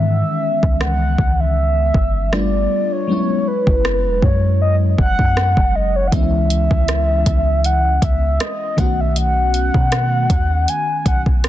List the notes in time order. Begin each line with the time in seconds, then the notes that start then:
Already playing: G#2 D#3 E3 G#3 B3 C#4 E5
0.63 C#2, kick
0.81 F#5, cross-stick
1.18 C#2, kick
1.40 E5
1.94 G1, kick
2.32 G3 A3 B3 D4 F4 D5, cross-stick
2.92 C#5
3.07 F#3 G#3 B3 C#4
3.12 E4
3.48 B4
3.67 F#1, kick
3.85 cross-stick
4.06 E1
4.22 F#2 C#5, kick
4.62 D#5
4.98 F#1 F#5, kick
5.19 F#2, kick
5.37 cross-stick
5.57 F#1, kick
5.76 D#5
5.96 C#5
6.07 E3 F#5
6.12 C#2 G#3 B3 C#4 E4 E5, kick, closed hi-hat
6.50 closed hi-hat
6.71 C#2, kick
6.88 cross-stick, closed hi-hat
7.26 C#2, kick, closed hi-hat
7.64 F#5, closed hi-hat
8.02 C#2 E5, kick, closed hi-hat
8.40 D#5, cross-stick, closed hi-hat
8.77 B1 D#3 A3 B3 C#4 F#5, kick, closed hi-hat
8.81 F#4
9.00 E5
9.16 F#5, closed hi-hat
9.54 closed hi-hat
9.74 B2, kick
9.92 cross-stick, closed hi-hat
10.30 D#2, kick, closed hi-hat
10.68 G#5, closed hi-hat
11.06 B1 F#5, kick, closed hi-hat
11.26 kick
11.44 F#5, cross-stick, closed hi-hat